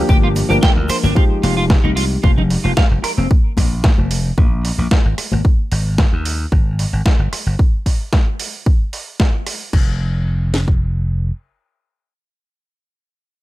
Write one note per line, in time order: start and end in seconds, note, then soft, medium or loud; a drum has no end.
0.00 0.46 F3 loud
0.00 0.47 A#3 medium
0.00 0.47 D4 medium
0.00 0.47 G4 loud
0.09 0.42 G1 loud
0.09 0.16 G4 medium
0.09 kick loud
0.09 high conga medium
0.09 shaker soft
0.23 0.27 F4 medium
0.36 open hi-hat loud
0.36 shaker medium
0.49 0.58 G1 medium
0.49 1.13 F3 medium
0.49 1.13 A#3 medium
0.49 1.13 D4 medium
0.49 0.56 G4 loud
0.49 1.14 A#4 medium
0.49 high conga medium
0.49 shaker medium
0.62 0.70 G5 loud
0.62 kick loud
0.62 snare loud
0.62 shaker soft
0.76 0.89 D2 medium
0.89 0.96 C5 medium
0.89 muted slap bass stroke soft
0.89 cross-stick medium
0.89 open hi-hat loud
0.89 shaker loud
1.04 1.12 G1 loud
1.04 1.13 D4 medium
1.04 high conga loud
1.04 shaker medium
1.15 3.25 F3 medium
1.15 3.25 G#3 medium
1.15 3.26 D#4 medium
1.15 1.23 F4 medium
1.15 3.26 G4 medium
1.15 kick loud
1.43 1.76 F1 medium
1.43 1.54 F4 medium
1.43 open hi-hat loud
1.43 high conga loud
1.57 1.63 F4 loud
1.70 kick loud
1.70 snare loud
1.84 2.16 C2 medium
1.84 1.90 D#4 medium
1.84 high conga medium
1.96 2.03 F4 loud
1.96 open hi-hat loud
2.23 2.56 F1 medium
2.23 2.30 F4 medium
2.23 kick loud
2.23 high conga medium
2.38 2.41 D#4 medium
2.38 low conga medium
2.50 open hi-hat loud
2.64 2.72 F1 medium
2.64 2.70 F4 medium
2.64 high conga medium
2.77 2.84 F5 medium
2.77 kick loud
2.77 snare loud
2.91 3.03 F1 medium
3.03 3.11 A#4 medium
3.03 cross-stick medium
3.03 open hi-hat loud
3.18 3.26 F1 medium
3.18 3.27 C4 medium
3.18 high conga medium
3.31 kick loud
3.57 3.90 A#1 medium
3.57 kick medium
3.57 open hi-hat loud
3.57 high conga medium
3.84 kick loud
3.84 snare loud
3.98 4.30 F1 medium
3.98 high conga medium
4.11 open hi-hat loud
4.38 4.71 A#1 medium
4.38 kick loud
4.38 high conga medium
4.65 open hi-hat loud
4.78 4.87 A#1 medium
4.78 high conga medium
4.91 kick loud
4.91 snare loud
5.05 5.18 G#1 medium
5.18 muted slap bass stroke soft
5.18 cross-stick medium
5.18 open hi-hat loud
5.32 5.40 G#1 medium
5.32 high conga medium
5.45 kick loud
5.72 6.04 G#1 medium
5.72 open hi-hat loud
5.98 kick loud
5.98 snare loud
6.13 6.45 D#2 medium
6.25 open hi-hat loud
6.52 6.85 G#1 medium
6.52 kick loud
6.79 open hi-hat loud
6.93 7.01 G#1 medium
7.06 kick loud
7.06 snare loud
7.19 7.32 G1 medium
7.32 muted slap bass stroke soft
7.32 cross-stick medium
7.32 open hi-hat loud
7.46 7.54 G1 medium
7.59 kick loud
7.86 kick medium
7.86 open hi-hat medium
8.13 kick loud
8.13 snare loud
8.40 open hi-hat loud
8.66 kick loud
8.93 open hi-hat loud
9.20 kick loud
9.20 snare loud
9.47 cross-stick medium
9.47 open hi-hat loud
9.73 11.30 F1 medium
9.73 kick loud
9.73 crash medium
10.54 snare medium
10.68 kick medium